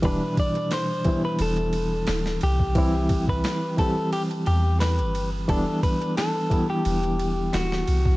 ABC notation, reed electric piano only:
X:1
M:4/4
L:1/8
Q:"Swing 16ths" 1/4=88
K:Em
V:1 name="Reed electric piano" clef=bass
[B,,E,G,D]3 [E,G,B,E]4- [E,G,B,E] | [E,G,CE]3 [E,G,CG]4- [E,G,CG] | [E,G,B,D]3 [E,G,B,E]4- [E,G,B,E] |]